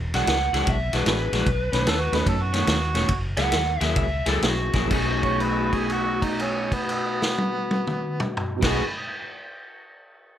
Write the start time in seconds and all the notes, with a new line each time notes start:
Already playing: E1
0.14 B1 E3 G#3 D4 F#4 F#5, snare, ride
0.27 C#2, snare, ride
0.53 C#2 E3 G#3 D4 F#4, snare, ride
0.67 B1 E5, kick, ride
0.93 B1 E3 G#3 D4 F#4 B4, snare, ride
1.06 A1 B3 D4 E4 F#4 G#4 B4, snare, ride
1.32 A#1 E3 G#3 D4 F#4, snare, ride
1.46 B1, kick, ride
1.72 B1 B2 D#3 A3 C#4 B4, snare, ride
1.87 D#2 A4, snare, ride
2.00 F#4
2.12 D#2 B2 D#3 A3 B3 C#4 D#4 F#4 A4 B4, snare, ride
2.26 F#2 A4, kick, ride
2.42 F#4
2.53 B2 D#3 A3 C#4 F#4, snare, ride
2.67 D#2, snare, ride
2.94 E1 B2 D#3 A3 C#4, snare, ride
3.09 F#1, kick, ride
3.37 C#2 F#3 A#3 E4 G#4 F#5, snare, ride
3.52 D#2, snare, ride
3.79 D#2 F#3 A#3 E4 G#4 E5, snare, ride
3.96 C#2 E5, kick, ride
4.26 C#2 F#3 A#3 E4 G#4 A4, snare, ride
4.42 B1 A#3 C#4 E4 F#4 G#4, snare, ride
4.46 F#4
4.73 A#1 F#3 A#3 E4 G#4, kick, snare, ride
4.85 B2 F#3
4.90 B1 B2 A3 C#4 D#4 F#4, kick, crash
4.95 D#4 G#4
5.23 C#5, kick, crash
5.40 B4, crash
5.48 D#5
5.56 G#5
5.66 B5
5.73 G#4 D#6, kick, crash
5.86 G#6, crash
5.92 F#4
5.98 B6
6.22 D#4, kick, crash
6.40 C#4, crash
6.72 B3, kick, crash
6.89 crash
7.22 snare
7.38 high tom
7.71 high tom
7.87 mid tom
8.20 mid tom
8.37 floor tom
8.57 B2 F#3
8.61 B1 B2 A3 B3 C#4 D#4 F#4 B4, kick, snare, crash
8.66 D#4 G#4
8.70 D#5
8.88 B5
8.97 D#6
9.08 G#6
9.19 B6